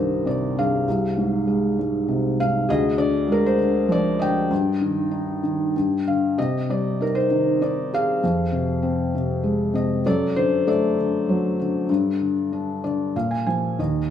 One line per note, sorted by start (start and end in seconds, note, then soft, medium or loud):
0.00 0.83 C2 soft
0.00 0.57 G2 soft
0.00 0.84 D#3 soft
0.00 0.89 G4 soft
0.00 0.89 A#4 medium
0.00 0.27 C5 medium
0.00 0.27 D5 medium
0.00 0.89 D#5 medium
0.25 0.85 C3 soft
0.25 0.58 D5 medium
0.57 0.86 G2 soft
0.57 2.35 G#4 soft
0.57 2.39 F5 medium
0.88 2.64 C2 medium
1.17 1.78 G#2 soft
1.47 2.64 G#3 soft
1.79 2.39 G#2 soft
2.08 2.66 C3 soft
2.40 2.68 G#2 soft
2.40 2.70 F5 medium
2.69 4.48 D2 medium
2.69 3.56 G#4 medium
2.69 2.97 D#5 medium
2.98 3.57 D3 soft
2.98 3.30 D5 medium
3.28 4.47 G#3 medium
3.32 3.45 A#4 medium
3.46 3.93 C5 medium
3.58 4.18 D3 soft
3.89 4.49 F3 medium
3.89 4.23 D5 medium
4.19 4.49 D3 soft
4.19 6.01 D#5 medium
4.19 6.02 G5 medium
4.51 5.71 G2 medium
4.81 5.42 D#3 soft
5.11 5.72 D#4 soft
5.43 5.74 D#3 soft
5.76 6.36 G2 medium
6.08 6.37 D3 soft
6.08 6.39 F5 medium
6.38 8.19 C3 medium
6.38 7.27 G4 medium
6.38 6.67 D#5 medium
6.69 7.89 G3 soft
6.69 7.01 D5 medium
7.01 7.60 D#4 soft
7.01 7.15 A#4 medium
7.15 7.63 C5 medium
7.31 8.20 D#3 soft
7.61 8.21 D#4 soft
7.61 7.90 D5 medium
7.93 9.71 G#4 medium
7.93 9.72 F5 medium
8.23 10.02 F2 medium
8.52 9.13 C3 soft
8.83 10.01 C4 soft
9.15 9.72 C3 soft
9.43 10.03 G#3 soft
9.74 10.04 C3 medium
9.74 10.06 D#5 medium
10.06 11.86 F#2 medium
10.06 10.66 A4 medium
10.06 10.34 D5 medium
10.36 10.97 D3 soft
10.36 10.68 C5 medium
10.67 11.86 A3 medium
10.67 13.11 A4 medium
10.67 12.82 D5 medium
10.98 11.58 D3 soft
11.29 11.88 F#3 soft
11.59 11.89 D3 medium
11.89 13.11 G2 medium
12.21 12.83 D3 soft
12.53 13.14 D4 soft
12.84 13.15 D3 soft
12.84 13.13 D5 medium
13.16 13.77 A#2 medium
13.16 13.31 F5 medium
13.31 13.45 G#5 medium
13.47 13.78 F3 soft
13.47 13.76 G#5 medium
13.79 14.10 D#2 soft
13.79 14.10 D#5 medium